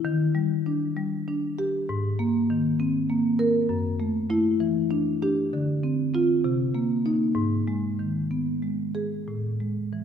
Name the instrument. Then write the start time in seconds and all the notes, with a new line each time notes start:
marimba
0.05 D#3
0.35 G3
0.66 D4
0.97 G3
1.28 D4
1.58 G4
1.89 G#2
2.19 A#3
2.50 D#3
2.80 C4
3.10 A#3
3.39 A#4
3.69 F#2
4.00 A3
4.30 A3 E4
4.60 E3
4.91 D4
5.22 D4 G4
5.53 D3
5.83 C4
6.14 C4 F4
6.44 C3
6.75 A#3
7.05 A#3 D#4
7.35 G#2
7.68 G#3
7.99 D#3
8.31 B3
8.63 G#3
8.95 G#4
9.28 A2
9.60 G#3
9.93 E3